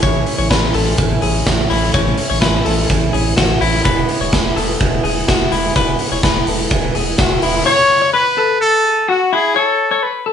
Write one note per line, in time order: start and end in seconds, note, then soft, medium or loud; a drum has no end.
0.02 0.23 A1 loud
0.02 0.26 A2 medium
0.02 0.27 E3 medium
0.02 0.27 A3 medium
0.02 0.26 C#4 medium
0.02 0.25 E4 medium
0.02 0.37 C#5 medium
0.02 kick medium
0.02 closed hi-hat medium
0.26 0.49 A3 soft
0.26 0.50 C#4 soft
0.26 0.50 E4 medium
0.26 open hi-hat medium
0.38 0.48 A1 medium
0.38 0.50 C#5 medium
0.49 0.70 A1 loud
0.49 0.74 E3 medium
0.49 0.74 A3 medium
0.49 0.74 C#4 medium
0.49 0.72 E4 medium
0.49 0.75 B4 medium
0.49 kick medium
0.49 snare medium
0.49 closed hi-hat medium
0.73 0.94 A1 medium
0.73 0.97 A3 soft
0.73 0.97 C#4 medium
0.73 0.97 E4 medium
0.73 1.20 A4 medium
0.73 open hi-hat medium
0.97 1.18 A1 medium
0.97 1.22 A2 medium
0.97 1.22 E3 medium
0.97 1.22 A3 medium
0.97 1.21 C#4 medium
0.97 1.20 E4 medium
0.97 kick loud
0.97 closed hi-hat medium
1.21 1.42 A1 medium
1.21 1.45 A3 soft
1.21 1.45 C#4 soft
1.21 1.46 E4 soft
1.21 1.46 G#4 medium
1.21 open hi-hat medium
1.45 1.66 A1 medium
1.45 1.70 E3 medium
1.45 1.70 A3 medium
1.45 1.69 C#4 medium
1.45 1.68 E4 medium
1.45 1.70 F#4 medium
1.45 kick loud
1.45 snare medium
1.45 closed hi-hat medium
1.69 1.90 A1 medium
1.69 1.93 A3 soft
1.69 1.94 C#4 soft
1.69 1.94 E4 medium
1.69 open hi-hat medium
1.94 2.14 A1 medium
1.94 2.18 A2 medium
1.94 2.18 E3 medium
1.94 2.18 A3 medium
1.94 2.18 C#4 medium
1.94 2.17 E4 medium
1.94 2.28 C#5 medium
1.94 kick medium
1.94 closed hi-hat medium
2.18 2.41 A3 soft
2.18 2.42 C#4 soft
2.18 2.42 E4 soft
2.18 open hi-hat medium
2.30 2.40 A1 medium
2.30 2.41 C#5 medium
2.41 2.62 A1 loud
2.41 2.66 E3 medium
2.41 2.66 A3 medium
2.41 2.65 C#4 medium
2.41 2.63 E4 medium
2.41 2.65 B4 medium
2.41 kick loud
2.41 snare loud
2.41 closed hi-hat soft
2.65 2.85 A1 loud
2.65 2.89 A3 soft
2.65 2.90 C#4 soft
2.65 2.89 E4 medium
2.65 3.10 A4 medium
2.65 open hi-hat medium
2.89 3.09 A1 loud
2.89 3.13 A2 medium
2.89 3.14 E3 medium
2.89 3.14 A3 medium
2.89 3.12 C#4 medium
2.89 3.11 E4 medium
2.89 kick medium
2.89 closed hi-hat medium
3.12 3.33 A1 medium
3.12 3.37 A3 soft
3.12 3.37 C#4 medium
3.12 3.37 E4 medium
3.12 3.36 G#4 medium
3.12 open hi-hat medium
3.36 3.57 A1 medium
3.36 3.61 E3 medium
3.36 3.61 A3 medium
3.36 3.61 C#4 medium
3.36 3.59 E4 medium
3.36 3.61 F#4 medium
3.36 kick loud
3.36 snare medium
3.36 closed hi-hat medium
3.61 3.81 A1 medium
3.61 3.86 A3 soft
3.61 3.85 C#4 medium
3.61 3.85 E4 medium
3.61 3.84 E4 medium
3.61 open hi-hat medium
3.85 4.05 E1 loud
3.85 4.09 E2 medium
3.85 4.09 B2 medium
3.85 4.09 E3 medium
3.85 4.09 G#3 medium
3.85 4.08 B3 medium
3.85 4.07 E4 medium
3.85 4.18 B4 medium
3.85 kick medium
3.85 closed hi-hat medium
4.08 4.31 E3 soft
4.08 4.32 G#3 soft
4.08 4.33 B3 soft
4.08 4.32 E4 medium
4.08 open hi-hat medium
4.20 4.30 E1 medium
4.20 4.33 C#5 medium
4.33 4.52 E1 medium
4.33 4.56 E3 medium
4.33 4.57 G#3 medium
4.33 4.56 B3 medium
4.33 4.55 E4 medium
4.33 4.57 B4 medium
4.33 kick loud
4.33 snare medium
4.33 closed hi-hat medium
4.56 4.76 E1 loud
4.56 4.80 E3 soft
4.56 4.80 G#3 medium
4.56 4.80 B3 medium
4.56 4.80 E4 medium
4.56 5.01 A4 medium
4.56 open hi-hat medium
4.80 5.00 E1 medium
4.80 5.04 E2 medium
4.80 5.04 B2 medium
4.80 5.05 E3 medium
4.80 5.04 G#3 medium
4.80 5.03 B3 medium
4.80 5.03 E4 medium
4.80 kick loud
4.80 closed hi-hat medium
5.04 5.24 E1 loud
5.04 5.26 E3 soft
5.04 5.27 G#3 medium
5.04 5.28 B3 medium
5.04 5.28 E4 medium
5.04 5.28 G#4 medium
5.04 open hi-hat medium
5.27 5.48 E1 medium
5.27 5.51 E3 medium
5.27 5.52 G#3 medium
5.27 5.51 B3 medium
5.27 5.50 E4 medium
5.27 5.52 F#4 medium
5.27 kick loud
5.27 snare medium
5.27 closed hi-hat medium
5.51 5.71 E1 medium
5.51 5.75 E3 soft
5.51 5.75 G#3 soft
5.51 5.75 B3 soft
5.51 5.76 E4 medium
5.51 open hi-hat medium
5.75 5.95 E1 loud
5.75 5.99 E2 medium
5.75 5.99 B2 medium
5.75 6.00 E3 medium
5.75 5.99 G#3 medium
5.75 5.98 B3 medium
5.75 5.97 E4 medium
5.75 6.09 B4 medium
5.75 kick medium
5.75 closed hi-hat medium
5.99 6.21 E3 soft
5.99 6.22 G#3 soft
5.99 6.23 B3 soft
5.99 6.23 E4 medium
5.99 open hi-hat medium
6.11 6.21 E1 medium
6.11 6.23 C#5 medium
6.23 6.43 E1 loud
6.23 6.47 E3 medium
6.23 6.47 G#3 medium
6.23 6.46 B3 medium
6.23 6.46 E4 medium
6.23 6.47 B4 medium
6.23 kick loud
6.23 snare medium
6.23 closed hi-hat medium
6.47 6.67 E1 medium
6.47 6.70 E3 soft
6.47 6.70 G#3 soft
6.47 6.71 B3 medium
6.47 6.71 E4 medium
6.47 6.92 A4 medium
6.47 open hi-hat medium
6.70 6.91 E1 loud
6.70 6.94 E2 medium
6.70 6.95 B2 medium
6.70 6.95 E3 medium
6.70 6.94 G#3 medium
6.70 6.94 B3 medium
6.70 6.93 E4 medium
6.70 kick medium
6.70 closed hi-hat medium
6.94 7.14 E1 medium
6.94 7.16 E3 soft
6.94 7.16 G#3 soft
6.94 7.17 B3 medium
6.94 7.18 E4 medium
6.94 7.19 G#4 medium
6.94 open hi-hat medium
7.17 7.38 E1 loud
7.17 7.42 E3 medium
7.17 7.41 G#3 medium
7.17 7.41 B3 medium
7.17 7.40 E4 medium
7.17 7.43 F#4 medium
7.17 kick loud
7.17 snare medium
7.17 closed hi-hat medium
7.41 7.62 E1 loud
7.41 7.67 E3 soft
7.41 7.66 G#3 soft
7.41 7.66 B3 medium
7.41 7.66 E4 medium
7.41 open hi-hat medium
7.66 8.00 C#5 loud
7.66 8.10 C#5 loud
8.02 8.13 C#5 medium
8.13 8.58 B4 loud
8.13 8.37 B4 medium
8.38 8.85 A4 medium
8.61 9.11 A4 loud
8.85 9.08 G#4 medium
9.09 9.32 F#4 medium
9.09 9.35 F#4 medium
9.33 9.56 E4 loud
9.33 9.59 G#4 medium
9.56 10.04 A4 medium
9.56 9.89 C#5 loud
9.91 10.03 C#5 medium
10.03 10.27 B4 medium
10.26 10.33 A4 medium